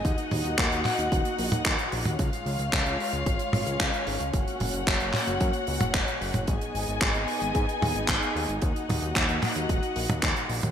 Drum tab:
HH |xxoxxxoxxxoxxxox|xxoxxxoxxxoxxxox|xxoxxxoxxxoxxxox|xxoxxxoxxxoxxxox|
CP |----x-x-----x---|----x-------x---|----x-x-----x---|----x-------x---|
T1 |--o---o----o---o|----------o-----|--o---o----o---o|----------o-----|
BD |o---o---o---o---|o---o---o---o---|o---o---o---o---|o---o---o---o---|

HH |xxoxxxoxxxoxxxox|
CP |----x-x-----x---|
T1 |--o---o----o---o|
BD |o---o---o---o---|